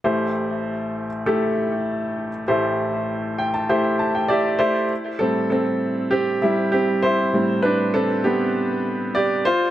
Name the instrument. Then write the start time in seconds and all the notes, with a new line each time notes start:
grand piano
0.04 A1 A2 A3 E4 G4 C5
1.26 A3 E4 G4 A4
2.48 A1 A2 A3 E4 G4 C5
3.38 G5
3.54 A5
3.69 A3 E4 G4 C5 G5
3.99 A5
4.15 G5
4.28 G4 D5 E5
4.59 A3 E4 G4 C5 D5
5.19 A2 G3 C4 A4
5.50 C4 A4
6.11 C4 G4
6.42 G3 E4
6.72 C4 G4
7.02 E4 C5
7.33 A2 G3 C4
7.63 D4 B4
7.94 C4 A4
8.24 B3 G4
9.15 G4 D5
9.45 F4 C5